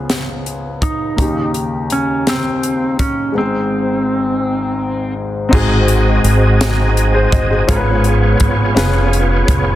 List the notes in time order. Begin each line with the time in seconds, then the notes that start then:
Already playing: C#2 C#3 B3 C#4 F4 G#4
0.10 snare, closed hi-hat
0.46 closed hi-hat
0.82 D#4, kick, closed hi-hat
1.16 D#2 C#3 D#3 A#3 D#4, kick, closed hi-hat
1.22 G4
1.54 closed hi-hat
1.90 C#4, closed hi-hat
2.27 C4, snare, closed hi-hat
2.63 closed hi-hat
2.99 C#4, kick, closed hi-hat
3.32 G#1 G#2 G#3 B3
3.36 C4 D#4 G#4
3.41 C4
5.49 G#1 G#2 C4 D#4
5.53 C4 F#4 G#4 D#5, kick, crash
5.88 closed hi-hat
6.24 G#1, closed hi-hat
6.61 snare, closed hi-hat
6.97 closed hi-hat
7.14 G#4 C5
7.32 G1 C5 D#5, kick, closed hi-hat
7.50 G#4 C5
7.67 G#1 G#2 B3 C#4 F4 G#4 A#4 C#5, kick, closed hi-hat
7.76 B4
8.04 closed hi-hat
8.40 G#1, kick, closed hi-hat
8.75 F1 B3 C#4 F4 G#4 B4 C#5, snare, closed hi-hat
9.13 closed hi-hat
9.48 F1, kick, closed hi-hat